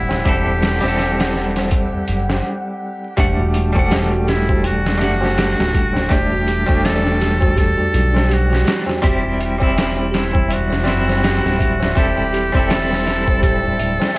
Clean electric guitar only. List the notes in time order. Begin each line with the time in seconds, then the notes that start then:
Already playing: G3 C4 E4 G4
0.25 G3 C4 E4 A4
0.81 G3 C4
0.85 E4 A4
3.17 G3 A3 D4 F#5
3.73 G3 A3
3.77 D4 F#5
4.98 G3 A3
5.02 D4 F#5
6.09 G3 A3 D4
6.66 G3 A3
6.71 D4
9.02 G3 C4 E4 G4
9.58 G3 C4
9.63 E4
10.84 G3 C4
10.89 E4
11.95 G3 C4 E4 A4
12.52 G3 C4
12.57 E4 A4